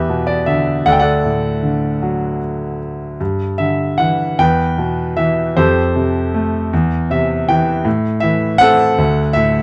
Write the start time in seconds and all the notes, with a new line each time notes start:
Already playing: E2 G4 B4 E5
0.09 B2
0.27 D5
0.46 D3 E5
0.86 D2 A4 D5 F#5
0.92 G5
0.99 A4 D5 F#5
1.25 A2
1.63 D3
2.02 F#3
3.20 G2
3.58 D3 E5
3.98 E3 F#5
4.39 E2 B4 G5
4.78 B2
5.17 E3 E5
5.57 F2 G4 A4 C5
5.96 C3
6.34 A3
6.73 E2
7.10 C3 E5
7.48 E3 G5
7.85 A2
8.20 E3 E5
8.58 C4 A4 F#5
8.98 D2
9.33 A2 E5